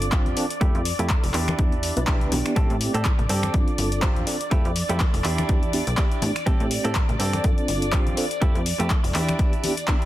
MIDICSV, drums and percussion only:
0, 0, Header, 1, 2, 480
1, 0, Start_track
1, 0, Tempo, 487805
1, 602, Time_signature, 4, 2, 24, 8
1, 9891, End_track
2, 0, Start_track
2, 0, Title_t, "Drums"
2, 17, Note_on_c, 9, 42, 49
2, 17, Note_on_c, 9, 54, 47
2, 115, Note_off_c, 9, 54, 0
2, 116, Note_off_c, 9, 42, 0
2, 117, Note_on_c, 9, 39, 119
2, 121, Note_on_c, 9, 42, 52
2, 122, Note_on_c, 9, 36, 103
2, 216, Note_off_c, 9, 39, 0
2, 220, Note_off_c, 9, 36, 0
2, 220, Note_off_c, 9, 42, 0
2, 256, Note_on_c, 9, 42, 26
2, 256, Note_on_c, 9, 63, 75
2, 354, Note_on_c, 9, 54, 84
2, 355, Note_off_c, 9, 42, 0
2, 355, Note_off_c, 9, 63, 0
2, 361, Note_on_c, 9, 46, 106
2, 453, Note_off_c, 9, 54, 0
2, 459, Note_off_c, 9, 46, 0
2, 496, Note_on_c, 9, 42, 50
2, 500, Note_on_c, 9, 54, 48
2, 595, Note_off_c, 9, 42, 0
2, 599, Note_off_c, 9, 54, 0
2, 601, Note_on_c, 9, 42, 53
2, 602, Note_on_c, 9, 36, 126
2, 700, Note_off_c, 9, 36, 0
2, 700, Note_off_c, 9, 42, 0
2, 737, Note_on_c, 9, 42, 25
2, 835, Note_off_c, 9, 42, 0
2, 840, Note_on_c, 9, 46, 114
2, 845, Note_on_c, 9, 54, 93
2, 939, Note_off_c, 9, 46, 0
2, 944, Note_off_c, 9, 54, 0
2, 977, Note_on_c, 9, 42, 50
2, 982, Note_on_c, 9, 54, 48
2, 1075, Note_off_c, 9, 42, 0
2, 1077, Note_on_c, 9, 39, 117
2, 1081, Note_off_c, 9, 54, 0
2, 1081, Note_on_c, 9, 42, 52
2, 1082, Note_on_c, 9, 36, 108
2, 1175, Note_off_c, 9, 39, 0
2, 1179, Note_off_c, 9, 42, 0
2, 1181, Note_off_c, 9, 36, 0
2, 1216, Note_on_c, 9, 46, 62
2, 1314, Note_off_c, 9, 46, 0
2, 1317, Note_on_c, 9, 39, 64
2, 1321, Note_on_c, 9, 46, 109
2, 1322, Note_on_c, 9, 54, 91
2, 1415, Note_off_c, 9, 39, 0
2, 1419, Note_off_c, 9, 46, 0
2, 1420, Note_off_c, 9, 54, 0
2, 1456, Note_on_c, 9, 26, 65
2, 1456, Note_on_c, 9, 42, 48
2, 1459, Note_on_c, 9, 54, 47
2, 1460, Note_on_c, 9, 63, 106
2, 1554, Note_off_c, 9, 26, 0
2, 1554, Note_off_c, 9, 42, 0
2, 1557, Note_off_c, 9, 54, 0
2, 1558, Note_off_c, 9, 63, 0
2, 1561, Note_on_c, 9, 42, 57
2, 1562, Note_on_c, 9, 36, 127
2, 1659, Note_off_c, 9, 42, 0
2, 1661, Note_off_c, 9, 36, 0
2, 1696, Note_on_c, 9, 42, 26
2, 1795, Note_off_c, 9, 42, 0
2, 1799, Note_on_c, 9, 54, 82
2, 1801, Note_on_c, 9, 46, 107
2, 1897, Note_off_c, 9, 54, 0
2, 1899, Note_off_c, 9, 46, 0
2, 1936, Note_on_c, 9, 42, 51
2, 1940, Note_on_c, 9, 54, 55
2, 2034, Note_off_c, 9, 42, 0
2, 2037, Note_on_c, 9, 39, 121
2, 2039, Note_off_c, 9, 54, 0
2, 2041, Note_on_c, 9, 42, 50
2, 2043, Note_on_c, 9, 36, 106
2, 2136, Note_off_c, 9, 39, 0
2, 2140, Note_off_c, 9, 42, 0
2, 2141, Note_off_c, 9, 36, 0
2, 2177, Note_on_c, 9, 42, 26
2, 2276, Note_off_c, 9, 42, 0
2, 2282, Note_on_c, 9, 46, 107
2, 2285, Note_on_c, 9, 54, 91
2, 2286, Note_on_c, 9, 63, 87
2, 2380, Note_off_c, 9, 46, 0
2, 2383, Note_off_c, 9, 54, 0
2, 2384, Note_off_c, 9, 63, 0
2, 2417, Note_on_c, 9, 26, 65
2, 2417, Note_on_c, 9, 42, 47
2, 2422, Note_on_c, 9, 54, 46
2, 2515, Note_off_c, 9, 26, 0
2, 2515, Note_off_c, 9, 42, 0
2, 2520, Note_off_c, 9, 54, 0
2, 2522, Note_on_c, 9, 42, 55
2, 2523, Note_on_c, 9, 36, 113
2, 2620, Note_off_c, 9, 42, 0
2, 2622, Note_off_c, 9, 36, 0
2, 2658, Note_on_c, 9, 42, 26
2, 2756, Note_off_c, 9, 42, 0
2, 2763, Note_on_c, 9, 46, 107
2, 2763, Note_on_c, 9, 54, 77
2, 2861, Note_off_c, 9, 46, 0
2, 2861, Note_off_c, 9, 54, 0
2, 2898, Note_on_c, 9, 42, 51
2, 2900, Note_on_c, 9, 54, 50
2, 2996, Note_off_c, 9, 42, 0
2, 2999, Note_off_c, 9, 54, 0
2, 2999, Note_on_c, 9, 39, 115
2, 3003, Note_on_c, 9, 36, 104
2, 3003, Note_on_c, 9, 42, 54
2, 3097, Note_off_c, 9, 39, 0
2, 3101, Note_off_c, 9, 42, 0
2, 3102, Note_off_c, 9, 36, 0
2, 3138, Note_on_c, 9, 42, 26
2, 3139, Note_on_c, 9, 64, 81
2, 3236, Note_off_c, 9, 42, 0
2, 3237, Note_off_c, 9, 64, 0
2, 3242, Note_on_c, 9, 46, 111
2, 3244, Note_on_c, 9, 54, 92
2, 3340, Note_off_c, 9, 46, 0
2, 3342, Note_off_c, 9, 54, 0
2, 3377, Note_on_c, 9, 26, 64
2, 3377, Note_on_c, 9, 42, 49
2, 3377, Note_on_c, 9, 63, 86
2, 3379, Note_on_c, 9, 54, 51
2, 3475, Note_off_c, 9, 26, 0
2, 3475, Note_off_c, 9, 42, 0
2, 3476, Note_off_c, 9, 63, 0
2, 3478, Note_off_c, 9, 54, 0
2, 3482, Note_on_c, 9, 42, 55
2, 3483, Note_on_c, 9, 36, 121
2, 3580, Note_off_c, 9, 42, 0
2, 3582, Note_off_c, 9, 36, 0
2, 3617, Note_on_c, 9, 42, 26
2, 3715, Note_off_c, 9, 42, 0
2, 3722, Note_on_c, 9, 46, 108
2, 3725, Note_on_c, 9, 54, 87
2, 3820, Note_off_c, 9, 46, 0
2, 3823, Note_off_c, 9, 54, 0
2, 3857, Note_on_c, 9, 42, 48
2, 3859, Note_on_c, 9, 54, 49
2, 3955, Note_off_c, 9, 42, 0
2, 3957, Note_off_c, 9, 54, 0
2, 3958, Note_on_c, 9, 39, 117
2, 3962, Note_on_c, 9, 42, 50
2, 3963, Note_on_c, 9, 36, 109
2, 4056, Note_off_c, 9, 39, 0
2, 4060, Note_off_c, 9, 42, 0
2, 4062, Note_off_c, 9, 36, 0
2, 4097, Note_on_c, 9, 42, 26
2, 4100, Note_on_c, 9, 63, 61
2, 4196, Note_off_c, 9, 42, 0
2, 4198, Note_off_c, 9, 63, 0
2, 4201, Note_on_c, 9, 46, 102
2, 4209, Note_on_c, 9, 54, 91
2, 4299, Note_off_c, 9, 46, 0
2, 4307, Note_off_c, 9, 54, 0
2, 4335, Note_on_c, 9, 54, 50
2, 4336, Note_on_c, 9, 42, 48
2, 4433, Note_off_c, 9, 54, 0
2, 4434, Note_off_c, 9, 42, 0
2, 4441, Note_on_c, 9, 42, 54
2, 4443, Note_on_c, 9, 36, 111
2, 4539, Note_off_c, 9, 42, 0
2, 4541, Note_off_c, 9, 36, 0
2, 4577, Note_on_c, 9, 42, 26
2, 4676, Note_off_c, 9, 42, 0
2, 4681, Note_on_c, 9, 46, 102
2, 4685, Note_on_c, 9, 54, 85
2, 4780, Note_off_c, 9, 46, 0
2, 4784, Note_off_c, 9, 54, 0
2, 4815, Note_on_c, 9, 54, 53
2, 4817, Note_on_c, 9, 42, 52
2, 4914, Note_off_c, 9, 54, 0
2, 4915, Note_off_c, 9, 42, 0
2, 4918, Note_on_c, 9, 39, 117
2, 4922, Note_on_c, 9, 42, 52
2, 4923, Note_on_c, 9, 36, 100
2, 5017, Note_off_c, 9, 39, 0
2, 5021, Note_off_c, 9, 42, 0
2, 5022, Note_off_c, 9, 36, 0
2, 5057, Note_on_c, 9, 46, 57
2, 5156, Note_off_c, 9, 46, 0
2, 5158, Note_on_c, 9, 39, 59
2, 5162, Note_on_c, 9, 46, 107
2, 5164, Note_on_c, 9, 54, 92
2, 5257, Note_off_c, 9, 39, 0
2, 5261, Note_off_c, 9, 46, 0
2, 5263, Note_off_c, 9, 54, 0
2, 5297, Note_on_c, 9, 54, 48
2, 5298, Note_on_c, 9, 26, 65
2, 5298, Note_on_c, 9, 42, 52
2, 5301, Note_on_c, 9, 63, 90
2, 5395, Note_off_c, 9, 54, 0
2, 5396, Note_off_c, 9, 26, 0
2, 5396, Note_off_c, 9, 42, 0
2, 5400, Note_off_c, 9, 63, 0
2, 5402, Note_on_c, 9, 42, 55
2, 5403, Note_on_c, 9, 36, 114
2, 5405, Note_on_c, 9, 54, 39
2, 5500, Note_off_c, 9, 42, 0
2, 5502, Note_off_c, 9, 36, 0
2, 5503, Note_off_c, 9, 54, 0
2, 5537, Note_on_c, 9, 42, 27
2, 5635, Note_off_c, 9, 42, 0
2, 5641, Note_on_c, 9, 46, 98
2, 5642, Note_on_c, 9, 54, 89
2, 5740, Note_off_c, 9, 46, 0
2, 5741, Note_off_c, 9, 54, 0
2, 5777, Note_on_c, 9, 42, 50
2, 5785, Note_on_c, 9, 54, 47
2, 5875, Note_off_c, 9, 42, 0
2, 5877, Note_on_c, 9, 39, 113
2, 5881, Note_on_c, 9, 42, 51
2, 5884, Note_off_c, 9, 54, 0
2, 5884, Note_on_c, 9, 36, 95
2, 5975, Note_off_c, 9, 39, 0
2, 5979, Note_off_c, 9, 42, 0
2, 5982, Note_off_c, 9, 36, 0
2, 6017, Note_on_c, 9, 42, 27
2, 6115, Note_off_c, 9, 42, 0
2, 6116, Note_on_c, 9, 63, 92
2, 6121, Note_on_c, 9, 46, 103
2, 6122, Note_on_c, 9, 54, 87
2, 6214, Note_off_c, 9, 63, 0
2, 6220, Note_off_c, 9, 46, 0
2, 6221, Note_off_c, 9, 54, 0
2, 6257, Note_on_c, 9, 26, 60
2, 6257, Note_on_c, 9, 42, 49
2, 6267, Note_on_c, 9, 54, 45
2, 6356, Note_off_c, 9, 26, 0
2, 6356, Note_off_c, 9, 42, 0
2, 6362, Note_on_c, 9, 42, 56
2, 6363, Note_on_c, 9, 36, 113
2, 6365, Note_off_c, 9, 54, 0
2, 6365, Note_on_c, 9, 54, 39
2, 6461, Note_off_c, 9, 42, 0
2, 6462, Note_off_c, 9, 36, 0
2, 6464, Note_off_c, 9, 54, 0
2, 6497, Note_on_c, 9, 42, 28
2, 6596, Note_off_c, 9, 42, 0
2, 6601, Note_on_c, 9, 46, 105
2, 6605, Note_on_c, 9, 54, 94
2, 6699, Note_off_c, 9, 46, 0
2, 6703, Note_off_c, 9, 54, 0
2, 6737, Note_on_c, 9, 42, 55
2, 6745, Note_on_c, 9, 54, 55
2, 6836, Note_off_c, 9, 42, 0
2, 6838, Note_on_c, 9, 39, 116
2, 6842, Note_on_c, 9, 42, 58
2, 6843, Note_off_c, 9, 54, 0
2, 6843, Note_on_c, 9, 36, 98
2, 6936, Note_off_c, 9, 39, 0
2, 6940, Note_off_c, 9, 42, 0
2, 6942, Note_off_c, 9, 36, 0
2, 6977, Note_on_c, 9, 42, 27
2, 6988, Note_on_c, 9, 64, 85
2, 7075, Note_off_c, 9, 42, 0
2, 7081, Note_on_c, 9, 46, 102
2, 7081, Note_on_c, 9, 54, 108
2, 7087, Note_off_c, 9, 64, 0
2, 7179, Note_off_c, 9, 54, 0
2, 7180, Note_off_c, 9, 46, 0
2, 7217, Note_on_c, 9, 26, 62
2, 7217, Note_on_c, 9, 42, 53
2, 7220, Note_on_c, 9, 63, 88
2, 7223, Note_on_c, 9, 54, 61
2, 7315, Note_off_c, 9, 26, 0
2, 7315, Note_off_c, 9, 42, 0
2, 7318, Note_off_c, 9, 63, 0
2, 7322, Note_off_c, 9, 54, 0
2, 7322, Note_on_c, 9, 42, 61
2, 7323, Note_on_c, 9, 36, 118
2, 7330, Note_on_c, 9, 54, 37
2, 7420, Note_off_c, 9, 42, 0
2, 7422, Note_off_c, 9, 36, 0
2, 7428, Note_off_c, 9, 54, 0
2, 7457, Note_on_c, 9, 42, 27
2, 7555, Note_off_c, 9, 42, 0
2, 7560, Note_on_c, 9, 46, 98
2, 7563, Note_on_c, 9, 54, 96
2, 7659, Note_off_c, 9, 46, 0
2, 7661, Note_off_c, 9, 54, 0
2, 7697, Note_on_c, 9, 42, 51
2, 7700, Note_on_c, 9, 54, 51
2, 7795, Note_off_c, 9, 42, 0
2, 7798, Note_on_c, 9, 39, 114
2, 7799, Note_off_c, 9, 54, 0
2, 7802, Note_on_c, 9, 42, 51
2, 7803, Note_on_c, 9, 36, 102
2, 7896, Note_off_c, 9, 39, 0
2, 7900, Note_off_c, 9, 42, 0
2, 7901, Note_off_c, 9, 36, 0
2, 7937, Note_on_c, 9, 42, 29
2, 7948, Note_on_c, 9, 63, 64
2, 8036, Note_off_c, 9, 42, 0
2, 8038, Note_on_c, 9, 54, 86
2, 8042, Note_on_c, 9, 46, 98
2, 8047, Note_off_c, 9, 63, 0
2, 8136, Note_off_c, 9, 54, 0
2, 8140, Note_off_c, 9, 46, 0
2, 8177, Note_on_c, 9, 42, 52
2, 8185, Note_on_c, 9, 54, 53
2, 8275, Note_off_c, 9, 42, 0
2, 8282, Note_on_c, 9, 36, 120
2, 8282, Note_on_c, 9, 42, 59
2, 8284, Note_off_c, 9, 54, 0
2, 8380, Note_off_c, 9, 42, 0
2, 8381, Note_off_c, 9, 36, 0
2, 8417, Note_on_c, 9, 42, 28
2, 8515, Note_off_c, 9, 42, 0
2, 8517, Note_on_c, 9, 54, 86
2, 8522, Note_on_c, 9, 46, 105
2, 8616, Note_off_c, 9, 54, 0
2, 8620, Note_off_c, 9, 46, 0
2, 8650, Note_on_c, 9, 54, 56
2, 8657, Note_on_c, 9, 42, 58
2, 8748, Note_off_c, 9, 54, 0
2, 8756, Note_off_c, 9, 42, 0
2, 8758, Note_on_c, 9, 39, 117
2, 8762, Note_on_c, 9, 36, 104
2, 8762, Note_on_c, 9, 42, 57
2, 8856, Note_off_c, 9, 39, 0
2, 8860, Note_off_c, 9, 36, 0
2, 8860, Note_off_c, 9, 42, 0
2, 8897, Note_on_c, 9, 46, 59
2, 8995, Note_off_c, 9, 46, 0
2, 8998, Note_on_c, 9, 39, 63
2, 9002, Note_on_c, 9, 46, 108
2, 9004, Note_on_c, 9, 54, 103
2, 9096, Note_off_c, 9, 39, 0
2, 9100, Note_off_c, 9, 46, 0
2, 9102, Note_off_c, 9, 54, 0
2, 9137, Note_on_c, 9, 26, 63
2, 9137, Note_on_c, 9, 42, 50
2, 9141, Note_on_c, 9, 63, 82
2, 9143, Note_on_c, 9, 54, 56
2, 9236, Note_off_c, 9, 26, 0
2, 9236, Note_off_c, 9, 42, 0
2, 9240, Note_off_c, 9, 63, 0
2, 9241, Note_off_c, 9, 54, 0
2, 9242, Note_on_c, 9, 36, 117
2, 9242, Note_on_c, 9, 42, 61
2, 9340, Note_off_c, 9, 36, 0
2, 9340, Note_off_c, 9, 42, 0
2, 9377, Note_on_c, 9, 42, 28
2, 9476, Note_off_c, 9, 42, 0
2, 9482, Note_on_c, 9, 46, 97
2, 9482, Note_on_c, 9, 63, 77
2, 9492, Note_on_c, 9, 54, 97
2, 9580, Note_off_c, 9, 46, 0
2, 9581, Note_off_c, 9, 63, 0
2, 9591, Note_off_c, 9, 54, 0
2, 9618, Note_on_c, 9, 42, 55
2, 9625, Note_on_c, 9, 54, 53
2, 9716, Note_off_c, 9, 42, 0
2, 9718, Note_on_c, 9, 39, 118
2, 9722, Note_on_c, 9, 36, 99
2, 9722, Note_on_c, 9, 42, 56
2, 9724, Note_off_c, 9, 54, 0
2, 9817, Note_off_c, 9, 39, 0
2, 9820, Note_off_c, 9, 36, 0
2, 9821, Note_off_c, 9, 42, 0
2, 9858, Note_on_c, 9, 42, 28
2, 9891, Note_off_c, 9, 42, 0
2, 9891, End_track
0, 0, End_of_file